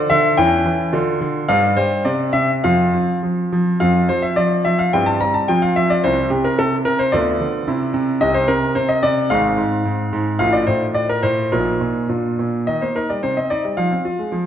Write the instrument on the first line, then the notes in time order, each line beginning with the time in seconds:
grand piano
Already playing: D4 F4
0.10 D3 E5
0.37 E2 E3 C#4 E4 G5
0.66 E3
0.93 D3 D4 F4
1.21 D3
1.49 G2 G3 D4 G4 F5
1.77 G3 C5
2.05 C3 C4 G4 D5
2.33 C3 E5
2.64 F2 F3 C4 F4 F5
2.94 F3
3.23 F3
3.52 F3
3.80 F2 F3 C4 F4 F5
4.09 F3 C5
4.22 E5
4.36 F3 D5
4.65 F3 E5
4.79 F5
4.93 G2 G3 C4 E4 G5
5.06 A5
5.21 G3 A#5
5.34 A5
5.48 F3 C4 F4 G5
5.62 F5
5.76 F3 E5
5.90 D5
6.04 C2 C3 C4 E4 C5
6.30 C3 G4
6.45 A#4
6.59 C3 A4
6.85 C3 A#4
6.99 C5
7.12 D2 D3 B3 F4 D5
7.40 D3
7.68 C3 C4 E4
7.94 C3
8.21 C2 C3 C4 G4 D#5
8.34 C5
8.48 C3 A#4
8.75 C3 C5
8.89 D#5
9.03 C3 D5
9.30 G#1 G#2 C4 G#4 F5
9.58 G#2
9.85 G#2
10.13 G#2
10.39 A1 A2 D#4 F4 F5
10.53 D5
10.67 A2 C5
10.95 A2 D5
11.09 A#4
11.23 A2 C5
11.52 A#1 A#2 D#4 F4 A#4
11.81 A#2
12.09 A#2 D4 F4
12.39 A#2
12.67 D#3 D#5
12.82 A#3 C5
12.96 D#4 A#4
13.10 G3 D5
13.23 C3 C5
13.37 C4 D#5
13.50 D#4 D5
13.65 G3
13.77 F3 F5
13.91 C4
14.05 F4
14.19 G#3
14.32 F3